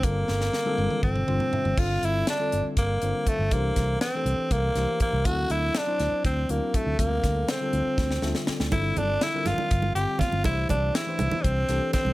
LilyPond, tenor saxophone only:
\new Staff \with { instrumentName = "Tenor saxophone" } { \time 7/8 \key g \dorian \tempo 4 = 121 bes2 c'4. | f'8 e'8 d'4 bes4 a8 | bes4 c'4 bes4 bes8 | fis'8 e'8 d'4 c'8 bes8 a8 |
bes4 c'2 r8 | e'8 d'8 e'8 f'4 g'8 f'8 | e'8 d'8 e'4 c'4 c'8 | }